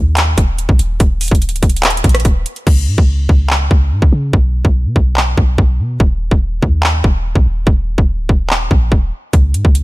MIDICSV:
0, 0, Header, 1, 3, 480
1, 0, Start_track
1, 0, Tempo, 416667
1, 1152, Time_signature, 4, 2, 24, 8
1, 11329, End_track
2, 0, Start_track
2, 0, Title_t, "808-style bass"
2, 0, Program_c, 0, 38
2, 0, Note_on_c, 0, 39, 105
2, 413, Note_off_c, 0, 39, 0
2, 433, Note_on_c, 0, 27, 104
2, 778, Note_off_c, 0, 27, 0
2, 794, Note_on_c, 0, 34, 105
2, 906, Note_off_c, 0, 34, 0
2, 912, Note_on_c, 0, 27, 107
2, 1143, Note_off_c, 0, 27, 0
2, 1153, Note_on_c, 0, 27, 117
2, 1498, Note_off_c, 0, 27, 0
2, 1514, Note_on_c, 0, 27, 108
2, 1753, Note_on_c, 0, 25, 103
2, 1770, Note_off_c, 0, 27, 0
2, 1866, Note_off_c, 0, 25, 0
2, 1873, Note_on_c, 0, 27, 108
2, 2333, Note_off_c, 0, 27, 0
2, 2352, Note_on_c, 0, 34, 108
2, 2583, Note_off_c, 0, 34, 0
2, 2592, Note_on_c, 0, 27, 110
2, 2823, Note_off_c, 0, 27, 0
2, 3073, Note_on_c, 0, 37, 106
2, 3313, Note_on_c, 0, 44, 98
2, 3330, Note_off_c, 0, 37, 0
2, 3427, Note_off_c, 0, 44, 0
2, 3434, Note_on_c, 0, 37, 103
2, 3779, Note_off_c, 0, 37, 0
2, 3792, Note_on_c, 0, 37, 103
2, 4253, Note_off_c, 0, 37, 0
2, 4272, Note_on_c, 0, 37, 108
2, 4513, Note_on_c, 0, 44, 100
2, 4530, Note_off_c, 0, 37, 0
2, 4627, Note_off_c, 0, 44, 0
2, 4632, Note_on_c, 0, 37, 102
2, 4748, Note_off_c, 0, 37, 0
2, 4752, Note_on_c, 0, 49, 104
2, 4983, Note_off_c, 0, 49, 0
2, 4992, Note_on_c, 0, 35, 113
2, 5338, Note_off_c, 0, 35, 0
2, 5353, Note_on_c, 0, 35, 110
2, 5592, Note_on_c, 0, 47, 99
2, 5610, Note_off_c, 0, 35, 0
2, 5706, Note_off_c, 0, 47, 0
2, 5711, Note_on_c, 0, 35, 101
2, 6173, Note_off_c, 0, 35, 0
2, 6192, Note_on_c, 0, 35, 105
2, 6423, Note_off_c, 0, 35, 0
2, 6431, Note_on_c, 0, 35, 104
2, 6673, Note_on_c, 0, 47, 95
2, 6690, Note_off_c, 0, 35, 0
2, 6901, Note_off_c, 0, 47, 0
2, 6913, Note_on_c, 0, 27, 114
2, 7258, Note_off_c, 0, 27, 0
2, 7273, Note_on_c, 0, 27, 102
2, 7618, Note_off_c, 0, 27, 0
2, 7632, Note_on_c, 0, 39, 99
2, 8093, Note_off_c, 0, 39, 0
2, 8112, Note_on_c, 0, 27, 109
2, 8458, Note_off_c, 0, 27, 0
2, 8472, Note_on_c, 0, 34, 103
2, 8587, Note_off_c, 0, 34, 0
2, 8593, Note_on_c, 0, 27, 102
2, 8823, Note_off_c, 0, 27, 0
2, 8833, Note_on_c, 0, 27, 113
2, 9178, Note_off_c, 0, 27, 0
2, 9194, Note_on_c, 0, 27, 106
2, 9433, Note_on_c, 0, 25, 100
2, 9450, Note_off_c, 0, 27, 0
2, 9547, Note_off_c, 0, 25, 0
2, 9553, Note_on_c, 0, 27, 102
2, 10013, Note_off_c, 0, 27, 0
2, 10032, Note_on_c, 0, 34, 108
2, 10263, Note_off_c, 0, 34, 0
2, 10272, Note_on_c, 0, 27, 107
2, 10503, Note_off_c, 0, 27, 0
2, 10753, Note_on_c, 0, 37, 113
2, 10992, Note_on_c, 0, 44, 97
2, 11009, Note_off_c, 0, 37, 0
2, 11106, Note_off_c, 0, 44, 0
2, 11114, Note_on_c, 0, 37, 102
2, 11329, Note_off_c, 0, 37, 0
2, 11329, End_track
3, 0, Start_track
3, 0, Title_t, "Drums"
3, 193, Note_on_c, 9, 39, 111
3, 193, Note_on_c, 9, 42, 80
3, 308, Note_off_c, 9, 39, 0
3, 308, Note_off_c, 9, 42, 0
3, 433, Note_on_c, 9, 36, 98
3, 433, Note_on_c, 9, 42, 87
3, 548, Note_off_c, 9, 36, 0
3, 549, Note_off_c, 9, 42, 0
3, 674, Note_on_c, 9, 42, 76
3, 789, Note_off_c, 9, 42, 0
3, 793, Note_on_c, 9, 36, 94
3, 908, Note_off_c, 9, 36, 0
3, 913, Note_on_c, 9, 42, 77
3, 1028, Note_off_c, 9, 42, 0
3, 1152, Note_on_c, 9, 42, 76
3, 1153, Note_on_c, 9, 36, 121
3, 1268, Note_off_c, 9, 36, 0
3, 1268, Note_off_c, 9, 42, 0
3, 1393, Note_on_c, 9, 42, 67
3, 1393, Note_on_c, 9, 46, 84
3, 1473, Note_off_c, 9, 42, 0
3, 1473, Note_on_c, 9, 42, 67
3, 1508, Note_off_c, 9, 46, 0
3, 1514, Note_on_c, 9, 36, 99
3, 1553, Note_off_c, 9, 42, 0
3, 1553, Note_on_c, 9, 42, 62
3, 1629, Note_off_c, 9, 36, 0
3, 1633, Note_off_c, 9, 42, 0
3, 1633, Note_on_c, 9, 42, 67
3, 1714, Note_off_c, 9, 42, 0
3, 1714, Note_on_c, 9, 42, 68
3, 1794, Note_off_c, 9, 42, 0
3, 1794, Note_on_c, 9, 42, 72
3, 1873, Note_off_c, 9, 42, 0
3, 1873, Note_on_c, 9, 36, 94
3, 1873, Note_on_c, 9, 42, 68
3, 1953, Note_off_c, 9, 42, 0
3, 1953, Note_on_c, 9, 42, 70
3, 1988, Note_off_c, 9, 36, 0
3, 2033, Note_off_c, 9, 42, 0
3, 2033, Note_on_c, 9, 42, 68
3, 2113, Note_off_c, 9, 42, 0
3, 2113, Note_on_c, 9, 39, 114
3, 2113, Note_on_c, 9, 42, 66
3, 2193, Note_off_c, 9, 42, 0
3, 2193, Note_on_c, 9, 42, 68
3, 2228, Note_off_c, 9, 39, 0
3, 2272, Note_off_c, 9, 42, 0
3, 2272, Note_on_c, 9, 42, 71
3, 2352, Note_off_c, 9, 42, 0
3, 2352, Note_on_c, 9, 36, 101
3, 2352, Note_on_c, 9, 42, 70
3, 2412, Note_off_c, 9, 42, 0
3, 2412, Note_on_c, 9, 42, 70
3, 2467, Note_off_c, 9, 36, 0
3, 2471, Note_on_c, 9, 37, 106
3, 2472, Note_off_c, 9, 42, 0
3, 2472, Note_on_c, 9, 42, 69
3, 2532, Note_off_c, 9, 42, 0
3, 2532, Note_on_c, 9, 42, 70
3, 2586, Note_off_c, 9, 37, 0
3, 2591, Note_off_c, 9, 42, 0
3, 2591, Note_on_c, 9, 42, 75
3, 2592, Note_on_c, 9, 36, 102
3, 2707, Note_off_c, 9, 36, 0
3, 2707, Note_off_c, 9, 42, 0
3, 2832, Note_on_c, 9, 42, 81
3, 2947, Note_off_c, 9, 42, 0
3, 2952, Note_on_c, 9, 42, 46
3, 3067, Note_off_c, 9, 42, 0
3, 3072, Note_on_c, 9, 36, 116
3, 3072, Note_on_c, 9, 49, 92
3, 3188, Note_off_c, 9, 36, 0
3, 3188, Note_off_c, 9, 49, 0
3, 3433, Note_on_c, 9, 36, 100
3, 3549, Note_off_c, 9, 36, 0
3, 3792, Note_on_c, 9, 36, 91
3, 3907, Note_off_c, 9, 36, 0
3, 4032, Note_on_c, 9, 39, 104
3, 4147, Note_off_c, 9, 39, 0
3, 4272, Note_on_c, 9, 36, 98
3, 4387, Note_off_c, 9, 36, 0
3, 4632, Note_on_c, 9, 36, 94
3, 4748, Note_off_c, 9, 36, 0
3, 4992, Note_on_c, 9, 36, 117
3, 5108, Note_off_c, 9, 36, 0
3, 5353, Note_on_c, 9, 36, 97
3, 5469, Note_off_c, 9, 36, 0
3, 5712, Note_on_c, 9, 36, 94
3, 5827, Note_off_c, 9, 36, 0
3, 5952, Note_on_c, 9, 39, 106
3, 6067, Note_off_c, 9, 39, 0
3, 6192, Note_on_c, 9, 36, 95
3, 6307, Note_off_c, 9, 36, 0
3, 6432, Note_on_c, 9, 36, 104
3, 6547, Note_off_c, 9, 36, 0
3, 6912, Note_on_c, 9, 36, 117
3, 7028, Note_off_c, 9, 36, 0
3, 7273, Note_on_c, 9, 36, 101
3, 7389, Note_off_c, 9, 36, 0
3, 7632, Note_on_c, 9, 36, 92
3, 7747, Note_off_c, 9, 36, 0
3, 7872, Note_on_c, 9, 39, 112
3, 7987, Note_off_c, 9, 39, 0
3, 8112, Note_on_c, 9, 36, 101
3, 8227, Note_off_c, 9, 36, 0
3, 8472, Note_on_c, 9, 36, 92
3, 8588, Note_off_c, 9, 36, 0
3, 8833, Note_on_c, 9, 36, 120
3, 8948, Note_off_c, 9, 36, 0
3, 9194, Note_on_c, 9, 36, 101
3, 9309, Note_off_c, 9, 36, 0
3, 9552, Note_on_c, 9, 36, 91
3, 9667, Note_off_c, 9, 36, 0
3, 9793, Note_on_c, 9, 39, 109
3, 9908, Note_off_c, 9, 39, 0
3, 10032, Note_on_c, 9, 36, 97
3, 10147, Note_off_c, 9, 36, 0
3, 10272, Note_on_c, 9, 36, 101
3, 10387, Note_off_c, 9, 36, 0
3, 10752, Note_on_c, 9, 42, 74
3, 10753, Note_on_c, 9, 36, 116
3, 10867, Note_off_c, 9, 42, 0
3, 10868, Note_off_c, 9, 36, 0
3, 10993, Note_on_c, 9, 42, 77
3, 11108, Note_off_c, 9, 42, 0
3, 11113, Note_on_c, 9, 36, 99
3, 11229, Note_off_c, 9, 36, 0
3, 11232, Note_on_c, 9, 42, 79
3, 11329, Note_off_c, 9, 42, 0
3, 11329, End_track
0, 0, End_of_file